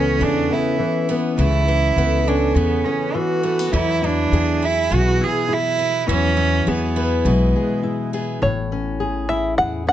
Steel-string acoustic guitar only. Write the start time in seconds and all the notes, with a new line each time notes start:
Already playing: E3 B3 C#4
0.21 C#3
0.51 B3
0.79 E3
1.10 B3
1.39 C#3
1.68 E3
1.97 B3
2.28 C#4
2.57 C#3
2.86 B3
3.15 E3
3.45 A3
3.59 B3
3.72 E3
4.02 E4
4.33 G#4
4.91 B2
5.21 E4
5.49 E4
6.07 E3
6.37 E4
6.68 G#4
6.97 B4
7.26 B2
7.56 G#4
7.83 E4
8.14 G#4
8.42 A2
8.72 C#4
9.00 G#4
9.30 E4
9.58 G#4
9.87 C#4